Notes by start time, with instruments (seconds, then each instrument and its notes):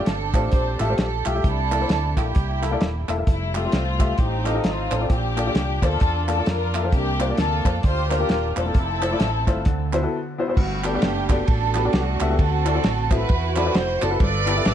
Already playing: upright piano A3 F4 G4
0.00 upright piano D5
0.06 fingered electric bass G1, string section C4 D4 A4, snare, closed hi-hat
0.34 fingered electric bass A1, upright piano A3 F4 G4 C5, kick, clap, closed hi-hat
0.52 fingered electric bass A#1, string section G4 A4 C5, kick, closed hi-hat
0.80 fingered electric bass A1, upright piano A3 F4 G4 E5, string section A4, snare, clap, closed hi-hat
0.89 upright piano A3 F4 G4 C5
0.98 fingered electric bass A#1, string section A4, snare, closed hi-hat
1.25 fingered electric bass B1, upright piano A3 F4 G4 E5, string section G4, clap, closed hi-hat
1.34 upright piano A3 F4 G4 E5
1.44 fingered electric bass C2, upright piano C3, string section D4 E4 A4, kick, closed hi-hat
1.71 upright piano A#3 E4 A4 D5, clap, closed hi-hat
1.80 upright piano A#3 E4 A4 C5
1.89 fingered electric bass D2, snare, closed hi-hat
2.16 fingered electric bass A#1, upright piano A#3 E4 A4 E5, string section A#3 E4 G4, kick, snare, clap, closed hi-hat
2.35 fingered electric bass C2, kick, closed hi-hat
2.62 upright piano A#3 E4 A4 E5, snare, clap, closed hi-hat
2.71 upright piano A#3 E4 A4 D5
2.81 fingered electric bass D#1, snare, closed hi-hat
3.08 fingered electric bass E1, upright piano A#3 E4 A4 E5, clap, closed hi-hat
3.17 upright piano A#3 E4 A4 E5
3.27 fingered electric bass F1, string section G3 A3 E4, kick, closed hi-hat
3.54 upright piano A3 F4 G4 E5, string section A3 C4 F4, clap, closed hi-hat
3.64 upright piano A3 F4 G4 E5
3.72 fingered electric bass C2, snare, closed hi-hat
3.99 upright piano A3 F4 G4 E5, kick, clap, closed hi-hat
4.18 fingered electric bass A1, upright piano A2, string section C4 D#4 G4, kick, closed hi-hat
4.44 upright piano C4 F4 A4 D#5, snare, clap, closed hi-hat
4.54 upright piano C4 F4 A4 D#5
4.64 fingered electric bass G#1, string section C4 F4, snare, closed hi-hat
4.91 fingered electric bass A1, upright piano C4 F4 A4 C5, clap, closed hi-hat
5.00 upright piano C4 F4 A4 D5
5.10 fingered electric bass A#1, upright piano A#2, string section D4 G4, kick, closed hi-hat
5.37 upright piano A#3 F4 A4 D5, clap, closed hi-hat
5.46 upright piano A#3 F4 A4 D5
5.55 fingered electric bass C2, snare, closed hi-hat
5.82 fingered electric bass D2, upright piano A#3 F4 A4 C5, string section D4 F4 A4, kick, snare, clap, closed hi-hat
6.00 fingered electric bass E2, kick, closed hi-hat
6.28 upright piano A#3 F4 A4 D5, string section A4, clap, closed hi-hat
6.38 upright piano A#3 F4 A4 D5
6.46 fingered electric bass F2, string section D4 F4 A#4, snare, closed hi-hat
6.74 upright piano A#3 F4 A4 E5, clap, closed hi-hat
6.83 upright piano A#3 F4 A4 C5
6.92 fingered electric bass C2, upright piano C3, string section A#3 D4 G4, kick, closed hi-hat
7.20 upright piano A#3 D4 F4 C5, clap, closed hi-hat
7.29 upright piano A#3 D4 F4 D5
7.37 fingered electric bass D2, string section D4 F4 A4, snare, closed hi-hat
7.65 fingered electric bass F2, upright piano A#3 D4 F4 C5, kick, snare, clap, closed hi-hat
7.83 fingered electric bass D2, string section F4 G4 C5, kick, closed hi-hat
8.10 upright piano A#3 D4 F4 C5, string section D4 F4 A#4, snare, clap, closed hi-hat
8.19 upright piano A#3 D4 F4 G4
8.29 fingered electric bass D#1, snare, closed hi-hat
8.56 fingered electric bass E1, upright piano A#3 D4 F4 C5, string section C4 E4 A4, clap, closed hi-hat
8.65 upright piano A#3 D4 F4 A4
8.74 fingered electric bass F1, kick, closed hi-hat
9.02 upright piano A3 E4 F4 C5, clap, closed hi-hat
9.11 upright piano A3 E4 F4 D5
9.20 fingered electric bass A1, snare, closed hi-hat
9.47 fingered electric bass G1, upright piano A3 E4 F4 C5, kick, snare, clap, closed hi-hat
9.65 fingered electric bass D2, upright piano D3, kick, closed hi-hat
9.93 upright piano B3 E4 F#4 C5, snare, clap, closed hi-hat
10.02 upright piano B3 E4 F#4 A4
10.38 upright piano B3 E4 F#4 C5
10.48 upright piano B3 E4 F#4 C5
10.57 fingered electric bass G1, upright piano G2, string section A3 B3 F#4, kick, crash
10.84 upright piano B3 F#4 G4 A4 D5, string section B3 D4 G4, clap, ride
10.93 upright piano B3 F#4 G4 A4 D5
11.02 fingered electric bass F#1, snare, ride
11.29 upright piano B3 F#4 G4 A4 D5, kick, snare, clap, ride
11.48 fingered electric bass A1, string section D4 F#4 A4, kick, ride
11.74 upright piano B3 F#4 G4 A4 B4, snare, clap, ride
11.84 upright piano B3 F#4 G4 A4 D5
11.93 fingered electric bass C2, string section A3 B3 F#4, snare, ride
12.20 fingered electric bass C#2, upright piano B3 F#4 G4 A4 E5, clap, ride
12.29 upright piano B3 F#4 G4 A4 E5
12.39 fingered electric bass D2, upright piano D3, string section C4 F#4 A4, kick, ride
12.65 upright piano C4 E4 F#4 A4 D5, clap, ride
12.74 upright piano C4 E4 F#4 A4 D5
12.84 fingered electric bass A1, snare, ride
13.11 upright piano C4 E4 F#4 A4 E5, string section E4 F#4 B4, kick, snare, clap, ride
13.29 fingered electric bass E2, kick, ride
13.56 upright piano C4 E4 F#4 A4 D5, string section B4, snare, clap, ride
13.65 upright piano C4 E4 F#4 A4 D5
13.75 fingered electric bass F1, string section C5, snare, ride
14.01 fingered electric bass F#1, upright piano C4 E4 F#4 A4 D5, string section A4, clap, ride
14.10 upright piano C4 E4 F#4 A4 B4
14.20 fingered electric bass G1, upright piano G2, string section A4 B4 D5, kick, ride
14.46 upright piano B3 E4 G4 A4 D5, clap, ride
14.56 upright piano B3 E4 G4 A4 E5
14.65 fingered electric bass A1, snare, ride